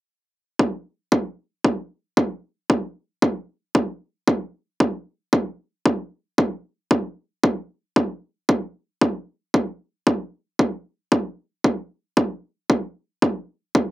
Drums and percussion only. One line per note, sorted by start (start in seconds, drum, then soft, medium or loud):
0.59 kick loud
1.12 kick loud
1.65 kick loud
2.17 kick loud
2.70 kick loud
3.22 kick loud
3.75 kick loud
4.28 kick loud
4.80 kick loud
5.33 kick loud
5.86 kick loud
6.38 kick loud
6.91 kick loud
7.44 kick loud
7.96 kick loud
8.49 kick loud
9.01 kick loud
9.54 kick loud
10.07 kick loud
10.59 kick loud
11.12 kick loud
11.64 kick medium
12.17 kick loud
12.70 kick loud
13.22 kick loud
13.75 kick loud